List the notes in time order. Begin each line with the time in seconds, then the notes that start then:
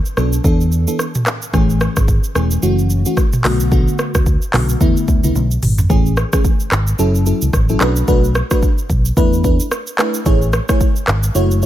0.05 shaker
0.17 B1 F#3 B3 D4 A4, cross-stick, shaker
0.33 shaker
0.44 E2 E3 B3 D4 A4, kick, shaker
0.61 shaker
0.72 shaker
0.87 E3 B3 D4 A4, shaker
0.99 cross-stick, shaker
1.15 mid tom, shaker
1.26 cross-stick, clap, shaker
1.42 shaker
1.53 A1 E3 A3 C#4 G#4, kick, cross-stick, shaker
1.70 shaker
1.81 cross-stick, shaker
1.97 G#1, kick, cross-stick, shaker
2.08 kick, shaker
2.24 shaker
2.35 E1 E3 A3 C#4 G#4, cross-stick, shaker
2.51 shaker
2.62 F#1 E3 A3 C#4 F#4, shaker
2.79 shaker
2.90 shaker
3.06 E3 A3 C#4 F#4, shaker
3.17 kick, cross-stick, shaker
3.33 mid tom, shaker
3.44 B1 D3 A3 B3 F#4, cross-stick, clap, open hi-hat, shaker
3.60 shaker
3.71 D3 A3 B3 F#4, kick, shaker
3.88 shaker
3.99 cross-stick, shaker
4.15 D2, kick, cross-stick, shaker
4.26 kick, shaker
4.42 shaker
4.53 B1 D3 A3 B3 F#4, cross-stick, clap, mid tom, open hi-hat, shaker
4.69 shaker
4.81 E2 D3 A3 B3 E4, kick, shaker
4.97 shaker
5.08 D2, kick, shaker
5.24 C#2 D3 A3 B3 E4, shaker
5.35 B1, high tom, shaker
5.51 shaker
5.63 G#1, mid tom, open hi-hat, shaker
5.78 floor tom, shaker
5.89 A1 E3 A3 C#4 G#4, kick, shaker
6.06 shaker
6.17 cross-stick, shaker
6.33 E3 A3 C#4 G#4, kick, cross-stick, shaker
6.44 kick, shaker
6.60 shaker
6.72 G#1, cross-stick, clap, shaker
6.87 shaker
6.99 F#1 F#3 C#4 E4 A4, shaker
7.15 shaker
7.26 F#3 C#4 E4 A4, shaker
7.42 C#2, shaker
7.53 A1, kick, cross-stick, shaker
7.69 F#3 C#4 E4 A4, shaker
7.81 B1 A3 D4 F#4 B4, cross-stick, clap, shaker
7.96 shaker
8.08 B1 A3 D4 F#4 B4, kick, shaker
8.24 shaker
8.35 cross-stick, shaker
8.51 A3 D4 F#4 B4, kick, cross-stick, shaker
8.63 kick, shaker
8.78 shaker
8.90 B1, kick, shaker
9.05 shaker
9.17 E2 A3 D4 E4 B4, kick, shaker
9.33 shaker
9.44 A3 D4 E4 B4, kick, shaker
9.60 shaker
9.71 cross-stick, shaker
9.87 shaker
9.98 A3 D4 E4 B4, cross-stick, clap, shaker
10.14 shaker
10.25 A1 A3 E4 G#4 C#5, kick, shaker
10.42 shaker
10.53 cross-stick, shaker
10.69 A3 E4 G#4 C#5, kick, cross-stick, shaker
10.80 kick, shaker
10.96 shaker
11.08 G#1, cross-stick, clap, shaker
11.23 shaker
11.35 F#1 A3 E4 F#4 C#5, shaker
11.51 shaker
11.62 A3 E4 F#4, shaker